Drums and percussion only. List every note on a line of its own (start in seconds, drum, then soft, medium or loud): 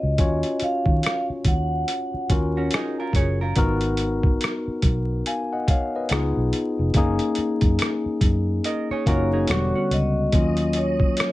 0.18 kick medium
0.18 closed hi-hat medium
0.43 closed hi-hat soft
0.60 closed hi-hat medium
0.86 kick medium
1.03 cross-stick loud
1.03 closed hi-hat medium
1.45 kick medium
1.45 closed hi-hat medium
1.88 closed hi-hat medium
2.30 kick medium
2.30 closed hi-hat medium
2.71 cross-stick loud
2.71 closed hi-hat medium
3.13 kick medium
3.13 closed hi-hat medium
3.56 kick medium
3.56 closed hi-hat medium
3.81 closed hi-hat soft
3.97 closed hi-hat medium
4.23 kick medium
4.41 cross-stick loud
4.41 closed hi-hat medium
4.82 kick medium
4.82 closed hi-hat medium
5.26 closed hi-hat medium
5.68 kick medium
5.68 closed hi-hat medium
6.09 cross-stick medium
6.09 closed hi-hat medium
6.53 closed hi-hat medium
6.94 kick medium
6.94 closed hi-hat medium
7.19 closed hi-hat soft
7.35 closed hi-hat medium
7.61 kick medium
7.61 closed hi-hat soft
7.79 cross-stick loud
7.79 closed hi-hat medium
8.21 kick medium
8.21 closed hi-hat medium
8.64 closed hi-hat medium
9.06 kick medium
9.06 closed hi-hat medium
9.47 cross-stick loud
9.47 closed hi-hat medium
9.91 closed hi-hat medium
10.32 kick medium
10.32 closed hi-hat medium
10.57 closed hi-hat soft
10.73 closed hi-hat medium
11.00 kick medium
11.17 cross-stick loud
11.17 closed hi-hat medium